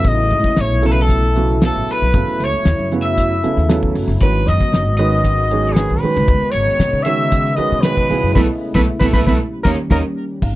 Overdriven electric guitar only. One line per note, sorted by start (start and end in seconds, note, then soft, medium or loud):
0.08 0.60 D#5 medium
0.60 0.86 C#5 medium
0.86 0.92 A4 medium
0.92 0.98 B4 medium
1.02 1.63 A4 medium
1.66 1.91 A4 medium
1.91 2.44 B4 medium
2.44 2.93 C#5 medium
3.02 3.91 E5 medium
4.22 4.48 B4 medium
4.48 4.96 D#5 medium
4.98 5.75 D#5 medium
5.75 6.00 G#4 medium
6.00 6.52 B4 medium
6.52 7.05 C#5 medium
7.05 7.57 E5 medium
7.57 7.83 D#5 medium
7.83 8.35 B4 medium
8.37 8.45 A4 medium
8.37 8.45 B4 medium
8.37 8.45 E5 medium
8.75 8.83 A4 medium
8.75 8.83 B4 medium
8.75 8.83 E5 medium
9.02 9.10 A4 medium
9.02 9.10 B4 medium
9.02 9.10 E5 loud
9.15 9.23 A4 loud
9.15 9.23 B4 medium
9.15 9.23 E5 medium
9.29 9.36 A4 medium
9.29 9.36 B4 medium
9.29 9.36 E5 medium
9.66 9.75 A#4 medium
9.66 9.75 C#5 medium
9.66 9.74 D#5 medium
9.91 10.00 A#4 medium
9.91 10.00 C#5 medium
9.91 10.00 D#5 medium